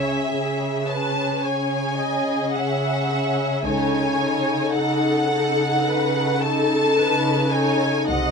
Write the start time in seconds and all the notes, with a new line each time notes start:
Already playing: C#2 C#3 C#4 G#4 C#5 E5
0.30 C#3 G#4
0.87 C#4 G#4 B4 A5
1.42 C#3 C#5 G#5
1.97 C#4 G#4 D#5
2.54 C#3 E5 F#5
3.10 C#4 G#4
3.65 C#2 C#3 D#4 A4 C#5 G#5
4.21 D#4 A4
4.76 C#3 A4 F#5
5.31 D#4 A4
5.88 C#3 B4
6.41 D#4 A4 A5
6.97 C#3 B4
7.52 D#4 A4 C#5 G#5
8.08 C2 C3 D#5 F#5